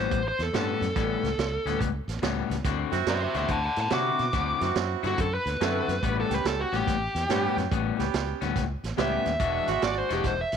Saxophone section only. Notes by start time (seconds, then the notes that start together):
2.92 C4 E4 F#4
3.91 C4 E4 F#4
4.61 C4 E4 F#4
5.61 C4 E4 A4
6.30 B3 C#4 G4
7.29 B3 C#4 G4
7.99 B3 C#4 G4
8.98 B3 C#4 G4
9.68 G#3 D4 F#4